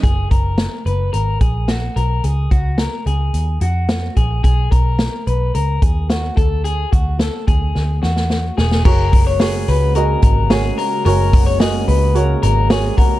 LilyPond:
<<
  \new Staff \with { instrumentName = "Upright piano" } { \time 4/4 \key fis \major \tempo 4 = 109 << { r1 | r1 | r1 | r1 |
r1 | r2 r8 ais''8 gis''8 fis''8 | } \\ { r1 | r1 | r1 | r1 |
<fis' gis' ais' cis''>4 <fis' gis' ais' cis''>4 <fis' gis' ais' dis''>4 <fis' gis' ais' cis''>4 | <fis' gis' ais' cis''>4 <fis' gis' ais' dis''>4 <fis' gis' ais' cis''>4 <fis' gis' ais' cis''>4 | } >> }
  \new Staff \with { instrumentName = "Clean electric guitar" } { \time 4/4 \key fis \major gis'8 ais'4 b'8 ais'8 gis'8 fis'8 ais'8 | gis'8 fis'8 ais'8 gis'4 fis'4 gis'8 | gis'8 ais'4 b'8 ais'8 gis'8 fis'8 a'8 | gis'8 fis'8 a'8 gis'4 fis'4 gis'8 |
ais'8. cis''16 gis'8 b'8 ais'8 ais'8 gis'8 ais'8 | ais'8. cis''16 gis'8 b'8 ais'8 ais'8 gis'8 ais'8 | }
  \new Staff \with { instrumentName = "Analog synth pad" } { \time 4/4 \key fis \major r1 | r1 | r1 | r1 |
<cis gis ais fis'>1~ | <cis gis ais fis'>1 | }
  \new Staff \with { instrumentName = "Picked electric bass" } { \clef bass \time 4/4 \key fis \major fis,,8 fis,,8. r16 fis,,8 gis,,8 ais,,4 b,,8 | cis,8 cis,8. r16 cis,8 dis,8 eis,4 ais,,8 | b,,8 b,,8. r16 b,,8 cis,8 dis,4 d,8~ | d,8 d,8. r16 d,8 d,8 e,4 e,,8 |
fis,,4. cis,4 gis,,4 r8 | fis,,4. cis,4 gis,,4 r8 | }
  \new DrumStaff \with { instrumentName = "Drums" } \drummode { \time 4/4 <hh bd>8 <hh bd>8 <hh sn>8 hh8 hh8 <hh bd>8 <hh sn>8 hh8 | hh8 <hh bd>8 <hh sn>8 hh8 hh8 hh8 <hh sn>8 <hh bd>8 | <hh bd>8 <hh bd>8 <hh sn>8 hh8 hh8 <hh bd>8 <hh sn>8 <hh bd>8 | hh8 <hh bd>8 <hh sn>8 <hh bd>8 sn8 sn16 sn16 sn8 sn16 sn16 |
<cymc bd>8 <hho hhp bd>8 <hho hhp sn>8 <hho hhp>8 <hho hhp>8 <hho hhp bd>8 <hho hhp sn>8 <hho hhp>8 | <hho hhp>8 <hho hhp bd>8 <hho hhp sn>8 <hho hhp>8 <hho hhp>8 <hho hhp>8 <hho hhp sn>8 <hho hhp bd>8 | }
>>